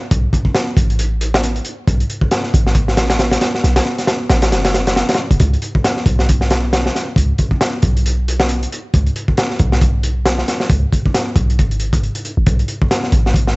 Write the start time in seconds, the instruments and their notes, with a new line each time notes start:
0.11 808-style bass B1, kick, closed hi-hat
0.33 kick, closed hi-hat
0.45 kick
0.55 snare, closed hi-hat
0.77 808-style bass A1, kick, closed hi-hat
0.90 closed hi-hat
0.99 closed hi-hat
1.21 closed hi-hat
1.34 snare
1.44 closed hi-hat
1.56 closed hi-hat
1.65 closed hi-hat
1.88 808-style bass B1, kick, closed hi-hat
2.00 closed hi-hat
2.10 closed hi-hat
2.21 kick
2.31 snare, closed hi-hat
2.44 snare
2.54 808-style bass A1, kick, closed hi-hat
2.67 snare
2.75 kick, closed hi-hat
2.88 snare
2.97 snare, closed hi-hat
3.10 snare, closed hi-hat
3.19 snare, closed hi-hat
3.31 snare, closed hi-hat
3.41 snare, closed hi-hat
3.55 snare
3.64 808-style bass B1, snare, closed hi-hat
3.76 snare, closed hi-hat
3.85 snare
3.98 snare, closed hi-hat
4.07 snare, closed hi-hat
4.30 808-style bass A1, snare, closed hi-hat
4.42 snare, closed hi-hat
4.52 808-style bass F#1, snare, closed hi-hat
4.65 snare, closed hi-hat
4.74 snare, closed hi-hat
4.87 snare, closed hi-hat
4.96 snare, closed hi-hat
5.09 snare, closed hi-hat
5.14 snare, closed hi-hat
5.18 snare
5.31 808-style bass F#1, kick, closed hi-hat
5.40 808-style bass C#2, kick, closed hi-hat
5.53 closed hi-hat
5.62 closed hi-hat
5.75 kick
5.84 snare, closed hi-hat
5.97 snare
6.06 808-style bass B1, kick, closed hi-hat
6.19 snare
6.29 kick, closed hi-hat
6.41 snare
6.50 snare, closed hi-hat
6.73 snare, closed hi-hat
6.86 snare
6.96 snare, closed hi-hat
7.16 808-style bass C#2, kick, closed hi-hat
7.38 kick, closed hi-hat
7.51 kick
7.61 snare, closed hi-hat
7.82 808-style bass B1, kick, closed hi-hat
7.97 closed hi-hat
8.06 closed hi-hat
8.28 closed hi-hat
8.40 snare
8.49 closed hi-hat
8.63 closed hi-hat
8.72 closed hi-hat
8.94 808-style bass C#2, kick, closed hi-hat
9.06 closed hi-hat
9.16 closed hi-hat
9.28 kick
9.37 snare, closed hi-hat
9.50 snare
9.59 808-style bass B1, kick, closed hi-hat
9.72 snare
9.81 kick, closed hi-hat
10.03 closed hi-hat
10.25 snare, closed hi-hat
10.38 snare
10.48 snare, closed hi-hat
10.60 snare
10.70 808-style bass C#2, kick, closed hi-hat
10.93 kick, closed hi-hat
11.06 kick
11.14 snare, closed hi-hat
11.36 808-style bass B1, kick, closed hi-hat
11.50 closed hi-hat
11.59 808-style bass G#1, kick, closed hi-hat
11.71 closed hi-hat
11.80 closed hi-hat
11.93 kick, closed hi-hat
12.03 closed hi-hat
12.15 closed hi-hat
12.25 closed hi-hat
12.37 808-style bass G#1
12.46 808-style bass B1, kick, closed hi-hat
12.59 closed hi-hat
12.68 closed hi-hat
12.82 kick
12.91 snare, closed hi-hat
13.03 snare
13.12 808-style bass A1, kick, closed hi-hat
13.26 snare
13.34 kick, closed hi-hat
13.47 snare